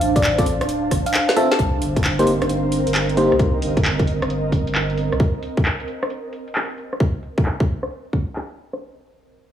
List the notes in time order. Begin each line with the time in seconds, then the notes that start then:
Already playing: D4 C5 F5 A5
0.01 A1, open hi-hat
0.16 D5, kick, closed hi-hat
0.24 clap
0.38 C4 F4 A4 D5, kick, closed hi-hat
0.46 A1, open hi-hat
0.61 D1, cross-stick, closed hi-hat
0.69 closed hi-hat
0.91 A1, kick, cross-stick, open hi-hat
1.06 F5, closed hi-hat
1.14 F5, clap
1.29 snare, closed hi-hat
1.36 C4 F4 A4 E5 A5, open hi-hat
1.51 A5, snare, closed hi-hat
1.59 C2 C4, kick, closed hi-hat
1.82 G1, open hi-hat
1.96 kick, closed hi-hat
2.04 A#4, clap
2.19 A#3 D#4 G4 C5, closed hi-hat
2.27 G1, open hi-hat
2.42 G1, cross-stick, closed hi-hat
2.49 closed hi-hat
2.65 D#5
2.72 open hi-hat
2.87 G1, closed hi-hat
2.95 clap
3.09 closed hi-hat
3.17 A#3 D#4 G4 C5, open hi-hat
3.32 C2, cross-stick
3.39 C2, kick, closed hi-hat
3.62 G1, open hi-hat
3.77 kick, closed hi-hat
3.85 clap
3.99 kick, closed hi-hat
4.07 G1, open hi-hat
4.22 G1, cross-stick, closed hi-hat
4.30 closed hi-hat
4.52 kick, open hi-hat
4.67 G1, closed hi-hat
4.75 clap
4.90 closed hi-hat
4.97 open hi-hat
5.12 C2, cross-stick, closed hi-hat
5.20 kick, closed hi-hat
5.43 open hi-hat
5.57 kick, closed hi-hat
5.65 clap
5.80 closed hi-hat
5.88 open hi-hat
6.03 cross-stick, closed hi-hat
6.10 closed hi-hat
6.33 open hi-hat
6.48 closed hi-hat
6.55 clap
6.70 closed hi-hat
6.78 open hi-hat
6.93 cross-stick
7.00 kick, closed hi-hat
7.23 open hi-hat
7.38 kick, closed hi-hat
7.45 clap
7.60 kick, closed hi-hat
7.68 open hi-hat
7.83 cross-stick, closed hi-hat
7.91 closed hi-hat
8.13 kick, open hi-hat
8.28 closed hi-hat
8.36 clap
8.51 closed hi-hat
8.58 open hi-hat
8.73 cross-stick, closed hi-hat